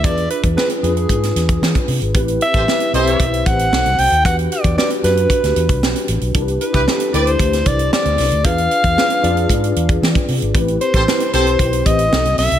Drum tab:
HH |xxxx-xxxxxxx-xox|xxxx-xxxxxxx-xox|xxxx-xxxxxxx-xxx|xxxx-xxxxxxx-xox|
SD |----o----oo-o---|----o-------o---|----o-o--o--o---|----o----o--o-o-|
BD |o--o----o--o-o--|o--o----o-o-----|o--o----o--o----|o--o----o-o-----|

HH |xxxx-xxxxxxx-xox|xxxx-xxxxxxx-xox|
SD |----o-------o---|----o-------o-o-|
BD |o--o----o--o-o--|o--o----o-o-----|